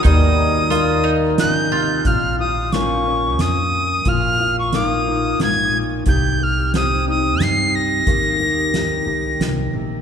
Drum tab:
HH |x-x-x-|x-x-x-|x-x-x-|x-x-x-|
SD |----o-|--o-o-|--o-o-|--o-o-|
BD |o-----|o-----|o-----|o-----|

HH |x-x-x-|
SD |--o-o-|
BD |o-----|